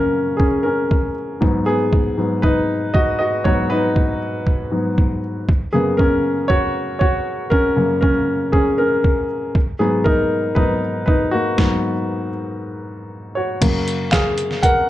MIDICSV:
0, 0, Header, 1, 3, 480
1, 0, Start_track
1, 0, Key_signature, 6, "major"
1, 0, Tempo, 508518
1, 1336, Time_signature, 4, 2, 24, 8
1, 14059, End_track
2, 0, Start_track
2, 0, Title_t, "Grand piano"
2, 0, Program_c, 0, 0
2, 0, Control_c, 0, 64, 127
2, 0, Note_on_c, 0, 42, 42
2, 0, Note_on_c, 0, 49, 42
2, 0, Note_on_c, 0, 58, 47
2, 0, Note_on_c, 0, 61, 60
2, 0, Note_on_c, 0, 66, 61
2, 0, Note_on_c, 0, 70, 74
2, 0, Note_on_c, 0, 73, 79
2, 346, Note_off_c, 0, 61, 0
2, 347, Note_on_c, 0, 68, 67
2, 375, Note_on_c, 0, 61, 52
2, 377, Note_off_c, 0, 70, 0
2, 404, Note_off_c, 0, 68, 0
2, 429, Note_off_c, 0, 61, 0
2, 594, Note_on_c, 0, 70, 73
2, 619, Note_on_c, 0, 61, 48
2, 1050, Note_off_c, 0, 70, 0
2, 1064, Note_off_c, 0, 61, 0
2, 1326, Note_on_c, 0, 44, 51
2, 1332, Note_on_c, 0, 54, 42
2, 1338, Note_on_c, 0, 59, 51
2, 1348, Note_off_c, 0, 58, 0
2, 1348, Control_c, 0, 64, 0
2, 1350, Note_off_c, 0, 42, 0
2, 1350, Note_off_c, 0, 66, 0
2, 1353, Note_off_c, 0, 73, 0
2, 1354, Note_off_c, 0, 49, 0
2, 1538, Control_c, 0, 64, 127
2, 1565, Note_off_c, 0, 59, 0
2, 1568, Note_on_c, 0, 68, 82
2, 1579, Note_on_c, 0, 59, 57
2, 1650, Note_off_c, 0, 44, 0
2, 1653, Note_off_c, 0, 54, 0
2, 2049, Note_off_c, 0, 59, 0
2, 2053, Note_on_c, 0, 44, 41
2, 2058, Note_on_c, 0, 54, 37
2, 2063, Note_on_c, 0, 59, 45
2, 2270, Note_off_c, 0, 44, 0
2, 2273, Note_off_c, 0, 54, 0
2, 2276, Note_off_c, 0, 59, 0
2, 2287, Note_on_c, 0, 71, 79
2, 2302, Note_on_c, 0, 63, 61
2, 2313, Note_off_c, 0, 68, 0
2, 2746, Note_off_c, 0, 63, 0
2, 2772, Note_on_c, 0, 75, 84
2, 2786, Note_off_c, 0, 71, 0
2, 2787, Note_on_c, 0, 66, 63
2, 2994, Note_off_c, 0, 75, 0
2, 3005, Note_off_c, 0, 66, 0
2, 3008, Note_on_c, 0, 75, 72
2, 3027, Note_on_c, 0, 66, 59
2, 3245, Note_off_c, 0, 66, 0
2, 3250, Note_on_c, 0, 73, 80
2, 3256, Note_on_c, 0, 44, 47
2, 3259, Note_off_c, 0, 75, 0
2, 3261, Note_on_c, 0, 54, 44
2, 3269, Note_on_c, 0, 59, 59
2, 3269, Note_on_c, 0, 66, 66
2, 3486, Note_off_c, 0, 66, 0
2, 3490, Note_on_c, 0, 71, 88
2, 3500, Note_off_c, 0, 73, 0
2, 3511, Note_on_c, 0, 63, 57
2, 3940, Note_off_c, 0, 44, 0
2, 3943, Note_off_c, 0, 54, 0
2, 3947, Note_off_c, 0, 59, 0
2, 4449, Note_on_c, 0, 44, 40
2, 4454, Note_on_c, 0, 54, 35
2, 4459, Note_on_c, 0, 59, 42
2, 4668, Note_off_c, 0, 44, 0
2, 4671, Note_off_c, 0, 54, 0
2, 4674, Note_off_c, 0, 59, 0
2, 4895, Note_off_c, 0, 71, 0
2, 4906, Note_off_c, 0, 63, 0
2, 5186, Control_c, 0, 64, 0
2, 5370, Control_c, 0, 64, 127
2, 5405, Note_on_c, 0, 68, 70
2, 5412, Note_on_c, 0, 42, 41
2, 5419, Note_on_c, 0, 49, 37
2, 5424, Note_on_c, 0, 58, 51
2, 5425, Note_on_c, 0, 59, 54
2, 5638, Note_on_c, 0, 70, 80
2, 5644, Note_off_c, 0, 59, 0
2, 5657, Note_off_c, 0, 68, 0
2, 5661, Note_on_c, 0, 61, 62
2, 6098, Note_off_c, 0, 42, 0
2, 6101, Note_off_c, 0, 49, 0
2, 6104, Note_off_c, 0, 58, 0
2, 6105, Note_off_c, 0, 61, 0
2, 6117, Note_on_c, 0, 73, 89
2, 6138, Note_on_c, 0, 66, 67
2, 6141, Note_off_c, 0, 70, 0
2, 6583, Note_off_c, 0, 66, 0
2, 6585, Note_off_c, 0, 73, 0
2, 6600, Note_on_c, 0, 73, 75
2, 6620, Note_on_c, 0, 66, 65
2, 7064, Note_off_c, 0, 66, 0
2, 7081, Note_on_c, 0, 70, 87
2, 7102, Note_off_c, 0, 73, 0
2, 7103, Note_on_c, 0, 61, 62
2, 7327, Note_on_c, 0, 42, 47
2, 7331, Note_on_c, 0, 49, 47
2, 7339, Note_on_c, 0, 58, 53
2, 7534, Note_off_c, 0, 70, 0
2, 7546, Note_off_c, 0, 61, 0
2, 7558, Note_on_c, 0, 70, 72
2, 7576, Note_on_c, 0, 61, 58
2, 7650, Note_off_c, 0, 42, 0
2, 7652, Note_off_c, 0, 49, 0
2, 7657, Note_off_c, 0, 58, 0
2, 8022, Note_off_c, 0, 61, 0
2, 8045, Note_on_c, 0, 68, 75
2, 8060, Note_on_c, 0, 61, 55
2, 8061, Note_off_c, 0, 70, 0
2, 8281, Note_off_c, 0, 61, 0
2, 8288, Note_on_c, 0, 70, 69
2, 8297, Note_off_c, 0, 68, 0
2, 8299, Note_on_c, 0, 61, 51
2, 8738, Note_off_c, 0, 70, 0
2, 8744, Note_off_c, 0, 61, 0
2, 9029, Control_c, 0, 64, 0
2, 9209, Control_c, 0, 64, 127
2, 9243, Note_on_c, 0, 68, 72
2, 9248, Note_on_c, 0, 44, 45
2, 9250, Note_on_c, 0, 54, 41
2, 9257, Note_on_c, 0, 59, 58
2, 9479, Note_on_c, 0, 70, 84
2, 9480, Note_off_c, 0, 59, 0
2, 9496, Note_on_c, 0, 63, 64
2, 9497, Note_off_c, 0, 68, 0
2, 9935, Note_off_c, 0, 44, 0
2, 9937, Note_off_c, 0, 54, 0
2, 9942, Note_off_c, 0, 63, 0
2, 9959, Note_on_c, 0, 71, 82
2, 9965, Note_on_c, 0, 44, 40
2, 9970, Note_on_c, 0, 54, 36
2, 9970, Note_on_c, 0, 59, 49
2, 9976, Note_on_c, 0, 63, 65
2, 9982, Note_off_c, 0, 70, 0
2, 10186, Note_off_c, 0, 44, 0
2, 10188, Note_off_c, 0, 54, 0
2, 10188, Note_off_c, 0, 59, 0
2, 10422, Note_off_c, 0, 63, 0
2, 10424, Note_off_c, 0, 71, 0
2, 10438, Note_on_c, 0, 71, 73
2, 10458, Note_on_c, 0, 63, 64
2, 10679, Note_on_c, 0, 66, 73
2, 10680, Note_off_c, 0, 63, 0
2, 10694, Note_off_c, 0, 71, 0
2, 10699, Note_on_c, 0, 58, 48
2, 10926, Note_on_c, 0, 44, 52
2, 10932, Note_on_c, 0, 54, 44
2, 10935, Note_on_c, 0, 59, 55
2, 11250, Note_off_c, 0, 44, 0
2, 11253, Note_off_c, 0, 54, 0
2, 11254, Note_off_c, 0, 59, 0
2, 11609, Note_off_c, 0, 66, 0
2, 11619, Note_off_c, 0, 58, 0
2, 12604, Note_on_c, 0, 73, 63
2, 12620, Note_on_c, 0, 66, 51
2, 12847, Note_on_c, 0, 42, 55
2, 12850, Note_on_c, 0, 49, 46
2, 12856, Note_on_c, 0, 58, 59
2, 12868, Control_c, 0, 64, 0
2, 13010, Control_c, 0, 64, 127
2, 13299, Note_off_c, 0, 66, 0
2, 13326, Note_on_c, 0, 77, 81
2, 13340, Note_on_c, 0, 68, 72
2, 13351, Note_off_c, 0, 73, 0
2, 13784, Note_off_c, 0, 68, 0
2, 13805, Note_on_c, 0, 78, 90
2, 13824, Note_on_c, 0, 70, 65
2, 13825, Note_off_c, 0, 77, 0
2, 14039, Note_off_c, 0, 42, 0
2, 14042, Note_off_c, 0, 49, 0
2, 14046, Note_off_c, 0, 58, 0
2, 14059, Note_off_c, 0, 70, 0
2, 14059, Note_off_c, 0, 78, 0
2, 14059, End_track
3, 0, Start_track
3, 0, Title_t, "Drums"
3, 374, Note_on_c, 9, 36, 77
3, 469, Note_off_c, 9, 36, 0
3, 859, Note_on_c, 9, 36, 88
3, 954, Note_off_c, 9, 36, 0
3, 1339, Note_on_c, 9, 36, 93
3, 1434, Note_off_c, 9, 36, 0
3, 1818, Note_on_c, 9, 36, 98
3, 1913, Note_off_c, 9, 36, 0
3, 2297, Note_on_c, 9, 36, 74
3, 2391, Note_off_c, 9, 36, 0
3, 2780, Note_on_c, 9, 36, 90
3, 2875, Note_off_c, 9, 36, 0
3, 3258, Note_on_c, 9, 36, 100
3, 3353, Note_off_c, 9, 36, 0
3, 3738, Note_on_c, 9, 36, 87
3, 3833, Note_off_c, 9, 36, 0
3, 4216, Note_on_c, 9, 36, 67
3, 4310, Note_off_c, 9, 36, 0
3, 4700, Note_on_c, 9, 36, 77
3, 4794, Note_off_c, 9, 36, 0
3, 5178, Note_on_c, 9, 36, 99
3, 5273, Note_off_c, 9, 36, 0
3, 5657, Note_on_c, 9, 36, 90
3, 5752, Note_off_c, 9, 36, 0
3, 6134, Note_on_c, 9, 36, 80
3, 6229, Note_off_c, 9, 36, 0
3, 6617, Note_on_c, 9, 36, 89
3, 6711, Note_off_c, 9, 36, 0
3, 7095, Note_on_c, 9, 36, 91
3, 7189, Note_off_c, 9, 36, 0
3, 7575, Note_on_c, 9, 36, 85
3, 7670, Note_off_c, 9, 36, 0
3, 8052, Note_on_c, 9, 36, 77
3, 8147, Note_off_c, 9, 36, 0
3, 8536, Note_on_c, 9, 36, 84
3, 8631, Note_off_c, 9, 36, 0
3, 9015, Note_on_c, 9, 36, 94
3, 9109, Note_off_c, 9, 36, 0
3, 9494, Note_on_c, 9, 36, 95
3, 9588, Note_off_c, 9, 36, 0
3, 9971, Note_on_c, 9, 36, 76
3, 10066, Note_off_c, 9, 36, 0
3, 10455, Note_on_c, 9, 36, 84
3, 10550, Note_off_c, 9, 36, 0
3, 10932, Note_on_c, 9, 38, 79
3, 10934, Note_on_c, 9, 36, 99
3, 11026, Note_off_c, 9, 38, 0
3, 11028, Note_off_c, 9, 36, 0
3, 12853, Note_on_c, 9, 42, 82
3, 12853, Note_on_c, 9, 49, 90
3, 12854, Note_on_c, 9, 36, 109
3, 12947, Note_off_c, 9, 42, 0
3, 12947, Note_off_c, 9, 49, 0
3, 12949, Note_off_c, 9, 36, 0
3, 13098, Note_on_c, 9, 42, 66
3, 13193, Note_off_c, 9, 42, 0
3, 13328, Note_on_c, 9, 39, 81
3, 13334, Note_on_c, 9, 36, 99
3, 13335, Note_on_c, 9, 38, 103
3, 13336, Note_on_c, 9, 42, 85
3, 13422, Note_off_c, 9, 39, 0
3, 13428, Note_off_c, 9, 36, 0
3, 13429, Note_off_c, 9, 38, 0
3, 13430, Note_off_c, 9, 42, 0
3, 13570, Note_on_c, 9, 42, 66
3, 13664, Note_off_c, 9, 42, 0
3, 13694, Note_on_c, 9, 38, 33
3, 13788, Note_off_c, 9, 38, 0
3, 13812, Note_on_c, 9, 36, 81
3, 13812, Note_on_c, 9, 42, 88
3, 13906, Note_off_c, 9, 36, 0
3, 13906, Note_off_c, 9, 42, 0
3, 14059, End_track
0, 0, End_of_file